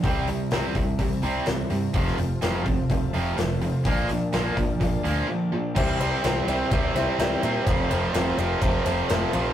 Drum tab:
CC |----------------|----------------|----------------|x---------------|
RD |----------------|----------------|----------------|--x-x-x-x-x-x-x-|
HH |o-o-o-o-o-o-o-o-|o-o-o-o-o-o-o-o-|o-o-o-o-o-o-----|----------------|
SD |----o-------o---|-o--o-------o---|----o-----------|----o-----o-o---|
BD |o-----o-o-------|o-----o-o-------|o-----o-o-------|o-------o-------|

CC |----------------|
RD |x-x-x-x-x-x-x-x-|
HH |----------------|
SD |----o-------o---|
BD |o-------o-------|